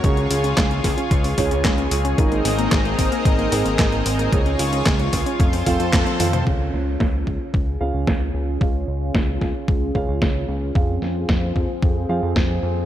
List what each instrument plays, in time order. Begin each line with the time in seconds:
Already playing: analog synth pad C#5
0.04 analog synth bass C#2, grand piano C#3 G#3 C#4 F4 C#5, synth arpeggio sound G#3, analog synth pad F4 G#4, kick, closed hi-hat
0.17 synth arpeggio sound C#4, closed hi-hat
0.31 analog synth bass C#2, synth arpeggio sound F4, open hi-hat
0.44 synth arpeggio sound C#4, closed hi-hat
0.57 analog synth bass C#2, synth arpeggio sound G#3, kick, snare, clap, closed hi-hat
0.71 synth arpeggio sound C#4, closed hi-hat
0.84 analog synth bass C#2, synth arpeggio sound F4, kick, snare, open hi-hat
0.98 synth arpeggio sound C#4, closed hi-hat
1.11 analog synth bass C#2, synth arpeggio sound G#3, kick, closed hi-hat
1.24 synth arpeggio sound C#4, open hi-hat
1.38 analog synth bass C#2, grand piano C#3 G#3 C#4 F4 C#5, synth arpeggio sound F4, kick, open hi-hat
1.51 analog synth bass C#2, synth arpeggio sound C#4, closed hi-hat
1.64 analog synth bass C#2, synth arpeggio sound G#3, kick, snare, clap, closed hi-hat
1.78 synth arpeggio sound C#4, closed hi-hat
1.91 analog synth bass C#2, synth arpeggio sound F4, open hi-hat
2.05 synth arpeggio sound C#4, closed hi-hat
2.18 analog synth bass G#1, grand piano G#2 G#3 C4 D#4 A#4, synth arpeggio sound G#3, analog synth pad C4 D#4 A#4 D#5, kick, closed hi-hat
2.31 synth arpeggio sound A#3, closed hi-hat
2.45 analog synth bass G#1, synth arpeggio sound C4, snare, open hi-hat
2.58 synth arpeggio sound A#3, closed hi-hat
2.72 analog synth bass G#1, synth arpeggio sound G#3, kick, snare, clap, closed hi-hat
2.85 synth arpeggio sound A#3, closed hi-hat
2.98 analog synth bass G#1, synth arpeggio sound C4, kick, open hi-hat
3.12 synth arpeggio sound A#3, closed hi-hat
3.25 analog synth bass G#1, synth arpeggio sound G#3, kick, closed hi-hat
3.39 synth arpeggio sound A#3, closed hi-hat
3.52 analog synth bass G#1, grand piano G#2 G#3 C4 D#4 A#4, synth arpeggio sound C4, open hi-hat
3.65 analog synth bass G#1, synth arpeggio sound A#3, closed hi-hat
3.79 analog synth bass G#1, synth arpeggio sound G#3, kick, snare, clap, closed hi-hat
3.92 synth arpeggio sound A#3, closed hi-hat
4.06 analog synth bass G#1, synth arpeggio sound C4, open hi-hat
4.19 synth arpeggio sound A#3, closed hi-hat
4.32 analog synth bass C#2, grand piano C#3 G#3 C#4 F4 C#5, synth arpeggio sound G#3, analog synth pad F4 C#5, kick, closed hi-hat
4.46 synth arpeggio sound C#4, closed hi-hat
4.59 analog synth bass C#2, synth arpeggio sound F4, open hi-hat
4.73 synth arpeggio sound C#4, closed hi-hat
4.86 analog synth bass C#2, synth arpeggio sound G#3, kick, snare, clap, closed hi-hat
4.99 synth arpeggio sound C#4, closed hi-hat
5.13 analog synth bass C#2, synth arpeggio sound F4, kick, snare, open hi-hat
5.26 synth arpeggio sound C#4, closed hi-hat
5.40 analog synth bass F2, synth arpeggio sound A3, analog synth pad A4 C5, kick, closed hi-hat
5.53 synth arpeggio sound C4, open hi-hat
5.66 analog synth bass F1, grand piano F3 C4 F4 A4 F5, synth arpeggio sound F4, kick, open hi-hat
5.80 analog synth bass F2, synth arpeggio sound C4, closed hi-hat
5.93 analog synth bass F2, synth arpeggio sound A3, kick, snare, clap, closed hi-hat
6.07 synth arpeggio sound C4, closed hi-hat
6.20 analog synth bass F2, grand piano C4 F4 A4 F5, synth arpeggio sound F4, open hi-hat, high tom
6.33 synth arpeggio sound C4, closed hi-hat, mid tom
6.47 analog synth bass C#2, grand piano C#3 C#4 F4 G#4 F5, analog synth pad C#4 F4 G#4, kick, crash
6.73 analog synth bass C#2, snare
7.00 analog synth bass C#2, kick, snare
7.27 analog synth bass C#2, kick
7.54 analog synth bass C#2, kick
7.81 analog synth bass C#2, grand piano C#3 C#4 F4 G#4 F5
7.94 analog synth bass C#2
8.07 analog synth bass C#2, kick, snare
8.34 analog synth bass C#2
8.61 analog synth bass C#2, grand piano C#3 C#4 F4 G#4 F5, kick
8.88 analog synth bass C#2
9.15 analog synth bass C#2, kick, snare
9.41 analog synth bass C#2, kick, snare
9.68 analog synth bass C#2, kick
9.95 analog synth bass C#2, grand piano C#3 C#4 F4 G#4 F5, kick
10.08 analog synth bass C#2
10.22 analog synth bass C#2, kick, snare
10.48 analog synth bass C#2
10.75 analog synth bass F2, grand piano F3 C4 F4 G#4 F5, analog synth pad C4 F4, kick
11.02 analog synth bass F2, snare
11.29 analog synth bass F2, kick, snare
11.56 analog synth bass F2, kick
11.82 analog synth bass F2, kick
12.09 analog synth bass F2, grand piano F3 C4 F4 G#4 F5
12.23 analog synth bass F2
12.36 analog synth bass F2, kick, snare
12.63 analog synth bass F2